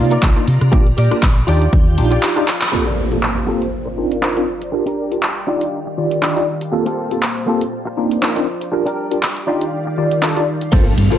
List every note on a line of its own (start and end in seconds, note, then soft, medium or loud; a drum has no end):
0.00 0.16 C3 medium
0.00 0.33 A#3 medium
0.00 0.33 D#4 medium
0.00 0.33 F4 loud
0.00 0.71 F4 medium
0.00 0.33 D5 medium
0.00 0.72 D5 medium
0.00 1.46 A#5 medium
0.10 0.22 D#4 medium
0.10 0.23 F4 medium
0.10 0.23 A#4 medium
0.10 0.23 D5 loud
0.10 closed hi-hat medium
0.23 0.32 C2 medium
0.23 kick medium
0.23 clap loud
0.35 0.45 A#3 medium
0.35 0.45 D4 medium
0.35 0.45 D#4 medium
0.35 0.46 F4 loud
0.35 muted clean electric guitar stroke soft
0.35 closed hi-hat medium
0.48 0.57 C3 medium
0.48 open hi-hat loud
0.61 0.69 C3 medium
0.61 cross-stick medium
0.61 closed hi-hat medium
0.72 0.91 A#1 loud
0.72 0.83 A#3 medium
0.72 0.83 D4 medium
0.72 0.84 F4 medium
0.72 0.86 G4 loud
0.72 0.84 G4 loud
0.72 1.47 G4 medium
0.72 0.86 A#4 loud
0.72 2.71 D5 medium
0.72 0.87 D5 loud
0.72 kick loud
0.86 closed hi-hat medium
0.97 1.07 A#2 medium
0.97 1.22 G4 medium
0.97 1.23 A#4 medium
0.97 1.23 D5 loud
0.97 open hi-hat loud
1.11 1.20 A#3 medium
1.11 1.20 D4 medium
1.11 1.20 F4 medium
1.11 1.21 G4 medium
1.11 muted fingered electric bass stroke soft
1.11 cross-stick medium
1.11 closed hi-hat medium
1.23 1.41 A#1 loud
1.23 kick loud
1.23 clap loud
1.47 1.66 D#2 medium
1.47 1.64 D4 medium
1.47 1.64 D#4 medium
1.47 1.97 F4 medium
1.47 2.72 F4 medium
1.47 1.65 F4 medium
1.47 1.98 G4 medium
1.47 1.65 G4 loud
1.47 1.98 D5 loud
1.47 2.72 G5 medium
1.47 open hi-hat loud
1.61 closed hi-hat medium
1.73 1.99 D#2 medium
1.73 kick loud
1.98 2.16 A#1 loud
1.98 2.33 D4 medium
1.98 2.33 D#4 medium
1.98 2.33 F4 medium
1.98 2.33 G4 loud
1.98 open hi-hat loud
2.11 2.22 F4 medium
2.11 2.23 G4 medium
2.11 2.23 D5 loud
2.11 closed hi-hat medium
2.23 clap loud
2.36 2.45 D4 medium
2.36 2.45 D#4 medium
2.36 2.46 F4 medium
2.36 2.46 G4 loud
2.36 muted clean electric guitar stroke soft
2.36 cross-stick medium
2.36 closed hi-hat medium
2.48 clap medium
2.48 open hi-hat loud
2.61 clap loud
2.61 closed hi-hat medium
2.72 2.83 A#3 medium
2.72 3.72 A#3 medium
2.72 2.83 C4 medium
2.72 2.84 F4 medium
2.72 2.84 G4 medium
2.72 3.72 G4 medium
2.72 2.84 A4 medium
2.72 4.71 C5 medium
2.72 3.72 F5 medium
2.72 3.72 A5 medium
2.72 muted clean electric guitar stroke loud
2.72 impact medium
2.85 3.17 F4 medium
2.85 3.17 G4 medium
2.85 3.17 A4 medium
2.85 3.17 A#4 medium
2.85 3.17 D5 medium
2.85 closed hi-hat medium
3.11 3.20 A#3 medium
3.11 3.20 C4 medium
3.11 3.20 F4 medium
3.11 3.21 G4 medium
3.11 3.21 A4 medium
3.11 closed hi-hat medium
3.23 clap loud
3.47 3.64 A#3 medium
3.47 3.64 C4 medium
3.47 3.61 F4 medium
3.47 3.64 F4 medium
3.47 3.61 G4 medium
3.47 3.65 G4 medium
3.47 3.61 A4 medium
3.47 3.65 A4 medium
3.47 3.62 A#4 medium
3.47 3.62 C5 medium
3.62 closed hi-hat medium
3.72 4.72 F4 medium
3.72 6.70 D5 medium
3.72 5.46 A#5 medium
3.72 muted clean electric guitar stroke soft
3.86 muted clean electric guitar stroke loud
3.97 4.33 C4 medium
3.97 4.33 D4 medium
3.97 4.33 D#4 medium
3.97 4.33 F4 medium
3.97 4.33 A#4 medium
3.97 muted clean electric guitar stroke soft
4.11 muted clean electric guitar stroke soft
4.11 closed hi-hat medium
4.22 4.42 D4 medium
4.22 4.42 D#4 medium
4.22 4.42 F4 medium
4.22 4.42 A#4 medium
4.22 4.42 C5 medium
4.22 clap loud
4.36 4.45 C4 medium
4.36 4.45 D4 medium
4.36 4.45 D#4 medium
4.36 4.46 F4 medium
4.36 4.46 A#4 medium
4.36 closed hi-hat medium
4.61 muted clean electric guitar stroke soft
4.61 closed hi-hat medium
4.72 4.83 D4 medium
4.72 4.84 F4 medium
4.72 4.84 G4 medium
4.72 7.70 G4 medium
4.72 4.84 A#4 medium
4.72 muted clean electric guitar stroke loud
4.86 5.17 D4 medium
4.86 5.17 G4 medium
4.86 5.18 A#4 medium
4.86 closed hi-hat soft
5.11 5.20 D4 medium
5.11 5.20 F4 medium
5.11 5.21 G4 medium
5.11 5.21 A#4 medium
5.11 closed hi-hat medium
5.23 clap loud
5.47 6.72 D#3 medium
5.47 5.78 D4 medium
5.47 5.78 D#4 medium
5.47 5.64 D#4 medium
5.47 5.64 F4 medium
5.47 5.78 F4 medium
5.47 5.65 G4 medium
5.47 5.79 G4 medium
5.47 5.65 D5 medium
5.47 7.71 F5 medium
5.61 closed hi-hat medium
5.85 muted clean electric guitar stroke loud
5.97 6.33 D#3 medium
5.97 6.33 F4 medium
5.97 6.33 G4 medium
5.97 6.33 D5 medium
5.97 muted clean electric guitar stroke soft
6.11 muted clean electric guitar stroke soft
6.11 closed hi-hat medium
6.22 6.42 D4 medium
6.22 6.42 D#4 medium
6.22 6.42 F4 medium
6.22 6.43 G4 medium
6.22 clap loud
6.36 6.45 D#4 medium
6.36 6.45 F4 medium
6.36 6.45 G4 medium
6.36 6.46 D5 medium
6.36 closed hi-hat medium
6.60 muted clean electric guitar stroke soft
6.60 closed hi-hat medium
6.72 6.83 A#3 medium
6.72 7.72 A#3 medium
6.72 6.83 C4 medium
6.72 6.83 F4 medium
6.72 6.84 G4 medium
6.72 6.84 A4 medium
6.72 7.72 C5 medium
6.72 7.72 A5 medium
6.72 muted clean electric guitar stroke loud
6.85 7.17 A#3 medium
6.85 7.17 C4 medium
6.85 7.17 F4 medium
6.85 7.17 G4 medium
6.85 7.17 A4 medium
6.85 closed hi-hat soft
7.11 7.20 A#3 medium
7.11 7.20 C4 medium
7.11 7.20 F4 medium
7.11 7.20 G4 medium
7.11 7.20 A4 medium
7.11 closed hi-hat medium
7.23 clap loud
7.47 7.61 A#3 medium
7.47 7.64 A#3 medium
7.47 7.61 C4 medium
7.47 7.64 C4 medium
7.47 7.61 F4 medium
7.47 7.64 F4 medium
7.47 7.64 G4 medium
7.47 7.62 G4 medium
7.47 7.65 A4 medium
7.47 7.62 A4 medium
7.61 closed hi-hat medium
7.72 8.72 F4 medium
7.72 8.72 C5 medium
7.72 10.70 D5 medium
7.72 muted clean electric guitar stroke soft
7.85 muted clean electric guitar stroke loud
7.97 8.33 A#3 medium
7.97 8.33 C4 medium
7.97 8.33 D4 medium
7.97 8.33 D#4 medium
7.97 8.33 F4 medium
7.97 muted clean electric guitar stroke soft
8.11 muted clean electric guitar stroke soft
8.11 closed hi-hat medium
8.22 8.42 C4 medium
8.22 8.42 D4 medium
8.22 8.42 D#4 medium
8.22 8.42 F4 medium
8.22 8.43 A#4 medium
8.22 clap loud
8.36 8.45 C4 medium
8.36 8.45 D4 medium
8.36 8.45 D#4 medium
8.36 8.45 F4 medium
8.36 8.45 A#4 medium
8.36 closed hi-hat soft
8.61 muted clean electric guitar stroke soft
8.61 closed hi-hat medium
8.72 8.83 D4 medium
8.72 8.83 F4 medium
8.72 9.46 G4 medium
8.72 8.84 G4 medium
8.72 8.84 A#4 medium
8.72 muted clean electric guitar stroke loud
8.85 9.17 D4 medium
8.85 9.17 G4 medium
8.85 9.17 A#4 medium
8.85 closed hi-hat soft
9.11 9.20 D4 medium
9.11 9.20 F4 medium
9.11 9.20 G4 medium
9.11 9.20 A#4 medium
9.11 closed hi-hat medium
9.23 clap loud
9.37 closed hi-hat soft
9.47 10.71 D#3 medium
9.47 9.78 D4 medium
9.47 9.64 D#4 medium
9.47 9.78 D#4 medium
9.47 9.64 F4 medium
9.47 9.78 F4 medium
9.47 10.71 G4 medium
9.47 9.64 G4 medium
9.47 9.79 G4 loud
9.47 9.64 D5 medium
9.47 10.71 F5 medium
9.61 closed hi-hat medium
9.85 muted clean electric guitar stroke loud
9.97 10.33 D#3 medium
9.97 10.33 F4 medium
9.97 10.33 G4 medium
9.97 10.33 D5 medium
9.97 muted clean electric guitar stroke soft
10.11 muted clean electric guitar stroke soft
10.11 closed hi-hat medium
10.22 10.42 D4 medium
10.22 10.42 D#4 medium
10.22 10.42 F4 medium
10.22 10.43 A4 medium
10.22 clap loud
10.36 10.45 D#4 medium
10.36 10.45 F4 medium
10.36 10.46 G4 medium
10.36 10.46 D5 loud
10.36 closed hi-hat soft
10.61 muted clean electric guitar stroke soft
10.61 closed hi-hat medium
10.72 10.91 G1 medium
10.72 10.92 A#3 loud
10.72 11.18 A#3 medium
10.72 10.92 C4 loud
10.72 11.18 C4 medium
10.72 10.83 F4 medium
10.72 10.92 F4 loud
10.72 10.84 A4 medium
10.72 11.18 A4 medium
10.72 10.92 A4 loud
10.72 10.84 A#4 medium
10.72 10.84 C5 loud
10.72 11.18 F5 medium
10.72 kick loud
10.72 crash loud
10.72 impact medium
10.98 11.07 G2 medium
10.98 open hi-hat loud
11.10 11.18 F4 medium
11.10 11.18 A4 medium
11.10 11.18 A#4 medium
11.10 11.18 C5 medium
11.10 muted clean electric guitar stroke medium
11.10 muted fingered electric bass stroke soft
11.10 closed hi-hat medium